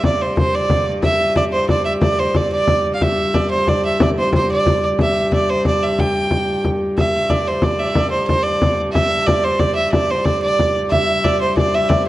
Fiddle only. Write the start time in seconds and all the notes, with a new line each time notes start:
0.06 D5
0.21 C5
0.38 C5
0.55 D5
1.03 E5
1.37 D5
1.52 C5
1.69 D5
1.85 E5
2.02 D5
2.19 C5
2.36 D5
2.53 D5
2.95 F5
3.02 E5
3.34 D5
3.51 C5
3.69 D5
3.86 E5
4.03 D5
4.19 C5
4.35 C5
4.52 D5
5.01 E5
5.34 D5
5.49 C5
5.67 D5
5.83 E5
5.99 G5
6.98 E5
7.30 D5
7.47 C5
7.63 D5
7.79 E5
7.85 D5 E5
7.96 D5
8.11 C5
8.28 C5
8.43 D5
8.93 E5
9.27 D5
9.44 C5
9.59 D5
9.75 E5
9.92 D5
10.10 C5
10.25 D5
10.42 D5
10.90 E5
11.25 D5
11.41 C5
11.57 D5
11.74 E5
11.89 D5